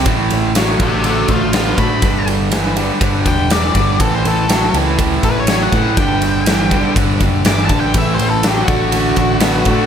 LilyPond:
<<
  \new Staff \with { instrumentName = "Lead electric guitar" } { \time 4/4 \key a \mixolydian \tempo 4 = 122 r4. <c'' e''>8 <c'' e''>8 <c'' a''>8 <c'' a''>8 b''8~ | b''8 r2 g''8 d''4 | a'16 c''16 a'4 r4 b'16 cis''8 fis''8. | g''2 r4 \tuplet 3/2 { d'''8 a''8 g''8 } |
\tuplet 3/2 { e''8 c''8 a'8 g'8 fis'4~ } fis'2 | }
  \new Staff \with { instrumentName = "Steel-string acoustic guitar" } { \time 4/4 \key a \mixolydian <a, e a cis' e' a'>8 <a cis' e' a'>8 <a cis' e' a'>8 <a d' fis' a'>8 <a, d a d' fis' a'>8 <a d' fis' a'>8 <a d' fis' a'>8 <a d' fis' a'>8 | <g d' g' b'>8 <d' g' b'>8 <g d' g' b'>8 <d' g' b'>8 <g d' g' b'>8 <d' g' b'>8 <g g' b'>8 <d' g' b'>8 | <a, e a cis' e' a'>8 <a cis' e' a'>8 <a cis' e' a'>8 <a cis' e' a'>8 <a, e a cis' e' a'>8 <a cis' e' a'>8 <a cis' e' a'>8 <a cis' e' a'>8 | <g d' g' b'>8 <d' g' b'>8 <g d' g' b'>8 <d' g' b'>8 <g d' g' b'>8 <d' g' b'>8 <g d' g' b'>8 <d' g' b'>8 |
<a, e a cis' e' a'>8 <a cis' e' a'>8 <a cis' e' a'>8 <a d' fis' a'>8 <a, d a d' fis' a'>8 <a d' fis' a'>8 <a d' fis' a'>8 <a d' fis' a'>8 | }
  \new Staff \with { instrumentName = "Overdriven electric guitar" } { \clef bass \time 4/4 \key a \mixolydian <a, e>4 <a, fis>8 <d a>8 <d a>4 <d b>8 <d a>8 | <g, d>4 <g, e>8 <g, d>8 <g, d>4 <g, e>8 <g, d>8 | <a, e>4 <a, fis>8 <a, e>8 <a, e>4 <a, fis>8 <a, e>8 | <g, d>4 <g, e>8 <g, d>8 <g, d>4 <g, e>8 <g, d>8 |
<a, e>4 <a, fis>8 <d a>8 <d a>4 <d b>8 <d a>8 | }
  \new Staff \with { instrumentName = "Overdriven electric guitar" } { \clef bass \time 4/4 \key a \mixolydian <a, e>4 <a, fis>8 <d a>8 <d a>4 <d b>8 <d a>8 | <g, d>4 <g, e>8 <g, d>8 <g, d>4 <g, e>8 <g, d>8 | <a, e>4 <a, fis>8 <a, e>8 <a, e>4 <a, fis>8 <a, e>8 | <g, d>4 <g, e>8 <g, d>8 <g, d>4 <g, e>8 <g, d>8 |
<a, e>4 <a, fis>8 <d a>8 <d a>4 <d b>8 <d a>8 | }
  \new Staff \with { instrumentName = "Picked electric bass" } { \clef bass \time 4/4 \key a \mixolydian a,,8 a,,4 a,,4 a,,4 a,8 | g,,2 g,,8 e,,4 g,,8 | a,,8 a,,4 cis,4 a,,4 a,8 | g,,2 g,,8 fis,,8 g,,8 a,,8 |
a,,8 a,,4 a,,4 a,,4 a,8 | }
  \new DrumStaff \with { instrumentName = "Drums" } \drummode { \time 4/4 <bd cymr>8 cymr8 <cymr sn>8 <bd cymr>8 cymr8 <bd cymr>8 <cymr sn>8 <bd cymr>8 | <bd cymr>8 cymr8 <cymr sn>8 cymr8 <bd cymr>8 <bd cymr>8 <cymr sn>8 <bd cymr>8 | <bd cymr>8 cymr8 <cymr sn>8 cymr8 <bd cymr>8 <bd cymr>8 <cymr sn>8 <bd cymr>8 | <bd cymr>8 cymr8 <cymr sn>8 <bd cymr>8 <bd cymr>8 <bd cymr>8 <cymr sn>8 <bd cymr>8 |
<bd cymr>8 cymr8 <cymr sn>8 <bd cymr>8 cymr8 <bd cymr>8 <cymr sn>8 <bd cymr>8 | }
>>